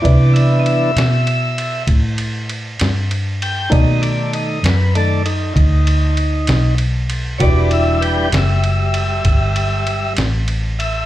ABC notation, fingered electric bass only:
X:1
M:12/8
L:1/8
Q:3/8=65
K:Em
V:1 name="Fingered electric bass" clef=bass
C,3 B,,3 A,,3 G,,3 | B,,3 F,,3 D,,3 B,,,3 | E,,,3 F,,,3 G,,,3 A,,,3 |]